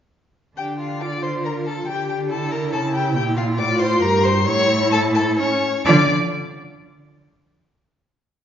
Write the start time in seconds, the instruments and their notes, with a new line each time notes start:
0.57 cello D3, viola D4, violin G4 G5
0.79 violin F4 F5
1.01 viola F4, violin D5 D6
1.22 violin C5 C6
1.43 violin A#4 A#5
1.66 violin A4 A5
1.87 cello D3, violin G4 G5, viola G4
2.09 violin G4 G5
2.30 viola E4, violin A4 A5
2.51 violin A#4 A#5
2.72 cello C#3, viola E4, violin A4 A5
2.93 violin G4 G5
3.15 cello A#2, violin G4 G5
3.37 violin F4 F5
3.58 cello A2, viola F4, violin D5 D6
3.79 violin C5 C6
4.02 cello G2, viola G4, violin A#4 A#5
4.24 violin C5 C6
4.46 cello A2, viola E4, violin C#5 C#6
4.92 violin A4 A5
5.15 violin A4 A5
5.38 viola C#4, violin C#5 C#6
5.85 cello D3, viola F4, violin D5 D6